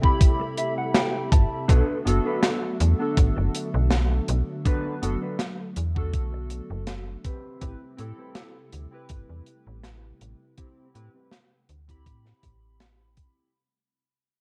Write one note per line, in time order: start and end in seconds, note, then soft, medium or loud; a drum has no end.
0.00 1.65 C3 medium
0.00 1.65 G3 medium
0.00 7.21 A3 medium
0.00 1.64 C4 medium
0.00 1.64 E4 medium
0.00 1.65 G4 medium
0.00 7.21 E5 medium
0.00 kick medium
0.05 1.65 B5 medium
0.21 kick loud
0.21 closed hi-hat medium
0.40 muted clean electric guitar stroke loud
0.58 0.76 E5 medium
0.58 muted clean electric guitar stroke soft
0.58 closed hi-hat medium
0.78 0.94 F#5 medium
0.94 1.29 G5 medium
0.94 muted clean electric guitar stroke medium
0.94 snare loud
0.94 closed hi-hat medium
1.14 muted clean electric guitar stroke soft
1.32 1.46 G1 medium
1.32 1.66 A5 medium
1.32 kick loud
1.32 closed hi-hat medium
1.68 1.83 B1 loud
1.68 7.21 D3 medium
1.68 7.21 F#3 medium
1.68 1.83 B3 medium
1.68 1.97 D4 loud
1.68 1.84 D4 medium
1.68 1.84 F#4 medium
1.68 1.97 A4 loud
1.68 1.84 A4 medium
1.68 1.98 B4 loud
1.68 kick loud
1.68 closed hi-hat medium
2.05 2.20 F#1 medium
2.05 2.94 B3 medium
2.05 2.95 D4 medium
2.05 2.95 F#4 medium
2.05 2.96 A4 loud
2.05 closed hi-hat medium
2.25 2.43 D4 medium
2.25 2.43 A4 medium
2.25 2.43 B4 medium
2.43 snare loud
2.43 closed hi-hat medium
2.62 muted clean electric guitar stroke soft
2.80 2.94 E2 medium
2.80 closed hi-hat medium
2.99 4.61 B3 medium
2.99 4.61 D4 medium
2.99 4.62 F#4 medium
2.99 4.62 A4 medium
3.17 3.31 A1 loud
3.17 kick loud
3.17 closed hi-hat medium
3.37 3.49 F#1 medium
3.37 muted clean electric guitar stroke loud
3.54 muted clean electric guitar stroke soft
3.54 closed hi-hat medium
3.74 4.20 B1 loud
3.90 muted clean electric guitar stroke medium
3.90 snare loud
3.90 closed hi-hat medium
4.11 muted clean electric guitar stroke soft
4.28 4.42 B1 loud
4.28 closed hi-hat medium
4.65 4.98 B3 medium
4.65 4.94 D4 loud
4.65 4.98 D4 medium
4.65 4.99 F#4 medium
4.65 4.94 A4 loud
4.65 4.94 B4 loud
4.65 4.99 B4 medium
4.65 kick loud
4.65 closed hi-hat medium
5.02 5.17 F#1 medium
5.02 5.17 B3 loud
5.02 5.17 D4 medium
5.02 5.17 F#4 medium
5.02 5.18 A4 loud
5.02 closed hi-hat medium
5.22 5.39 D4 medium
5.22 5.40 A4 medium
5.22 5.40 B4 medium
5.39 snare loud
5.39 closed hi-hat medium
5.59 muted clean electric guitar stroke soft
5.76 6.15 E2 medium
5.76 closed hi-hat medium
5.95 7.22 B3 medium
5.95 7.22 D4 medium
5.95 7.23 F#4 medium
5.95 7.23 A4 medium
5.95 kick medium
6.13 6.61 B1 loud
6.13 kick loud
6.13 closed hi-hat medium
6.33 muted clean electric guitar stroke loud
6.50 muted clean electric guitar stroke soft
6.50 closed hi-hat medium
6.70 7.17 F#1 loud
6.87 muted clean electric guitar stroke medium
6.87 snare loud
6.87 closed hi-hat medium
7.07 muted clean electric guitar stroke soft
7.24 13.50 C3 medium
7.24 13.50 G3 medium
7.24 13.50 A3 medium
7.24 7.99 C4 medium
7.24 10.18 E4 medium
7.24 7.99 G4 medium
7.24 7.99 B4 loud
7.24 kick loud
7.24 closed hi-hat medium
7.61 7.76 A1 medium
7.61 7.76 C4 medium
7.61 7.76 E4 medium
7.61 7.76 G4 medium
7.61 7.77 B4 medium
7.61 kick loud
7.61 closed hi-hat medium
7.97 8.13 A2 medium
7.97 8.87 C4 medium
7.97 8.87 E4 medium
7.97 8.88 G4 medium
7.97 8.88 A4 loud
7.97 closed hi-hat medium
8.18 8.35 C4 medium
8.18 8.36 G4 medium
8.18 8.36 B4 medium
8.35 snare loud
8.35 closed hi-hat medium
8.56 muted clean electric guitar stroke soft
8.73 8.87 D2 medium
8.73 closed hi-hat medium
8.91 10.53 C4 medium
8.91 10.54 E4 medium
8.91 10.54 G4 medium
8.91 10.55 B4 medium
9.09 9.24 G1 medium
9.09 kick loud
9.09 closed hi-hat medium
9.29 9.42 E2 medium
9.29 muted clean electric guitar stroke loud
9.46 muted clean electric guitar stroke soft
9.46 closed hi-hat medium
9.67 10.13 A1 loud
9.83 muted clean electric guitar stroke medium
9.83 snare loud
9.83 closed hi-hat medium
10.03 muted clean electric guitar stroke soft
10.21 10.35 A1 medium
10.21 13.51 F#5 medium
10.21 closed hi-hat medium
10.57 10.86 C4 loud
10.57 10.91 C4 medium
10.57 10.91 E4 medium
10.57 10.86 G4 loud
10.57 10.91 G4 medium
10.57 10.87 C5 loud
10.57 kick loud
10.57 closed hi-hat medium
10.94 11.09 A2 medium
10.94 11.09 C4 medium
10.94 11.09 E4 medium
10.94 11.10 G4 medium
10.94 11.10 B4 loud
10.94 closed hi-hat medium
11.14 11.32 C4 medium
11.14 11.32 G4 medium
11.14 11.32 B4 medium
11.31 snare loud
11.31 closed hi-hat medium
11.51 muted clean electric guitar stroke soft
11.69 12.08 D2 medium
11.69 closed hi-hat medium
11.88 13.49 C4 medium
11.88 13.50 E4 medium
11.88 13.50 G4 medium
11.88 13.51 B5 medium
11.88 kick medium
11.88 closed hi-hat soft
12.06 12.33 A2 loud
12.06 kick loud
12.06 closed hi-hat medium
12.25 muted clean electric guitar stroke loud
12.25 snare soft
12.43 13.28 A1 medium
12.43 muted clean electric guitar stroke soft
12.43 kick medium
12.43 closed hi-hat medium
12.80 muted clean electric guitar stroke medium
12.80 snare loud
12.80 closed hi-hat medium
13.00 muted clean electric guitar stroke soft
13.17 kick loud
13.17 closed hi-hat medium